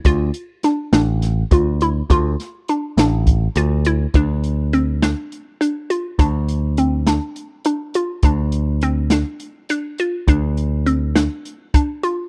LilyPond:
<<
  \new Staff \with { instrumentName = "Synth arpeggio sound" } { \time 7/8 \key d \minor \tempo 4 = 103 f'4 d'8 d'4 f'8 e'8 | f'4 d'8 d'4 f'8 e'8 | d'4 c'8 d'4 d'8 f'8 | d'4 c'8 d'4 d'8 f'8 |
d'4 c'8 d'4 d'8 f'8 | d'4 c'8 d'4 d'8 f'8 | }
  \new Staff \with { instrumentName = "Picked electric bass" } { \clef bass \time 7/8 \key d \minor d,8 r4 a,,4 d,4 | d,8 r4 a,,4 d,4 | d,2 r4. | d,2 r4. |
d,2 r4. | d,2 r4. | }
  \new DrumStaff \with { instrumentName = "Drums" } \drummode { \time 7/8 <hh bd>8 hh8 <hh sn>8 <hh sn>8 <hh sn>8 <hh bd>8 hh8 | <hh bd>8 <hh sn>8 hh8 <hh sn>8 <hh bd>8 hh8 hh8 | <hh bd>8 hh8 hh8 <hh sn>8 hh8 hh8 hh8 | <hh bd>8 hh8 hh8 <hh sn>8 hh8 hh8 hh8 |
<hh bd>8 hh8 hh8 <hh sn>8 hh8 hh8 hh8 | <hh bd>8 hh8 hh8 <hh sn>8 hh8 <hh bd>8 hh8 | }
>>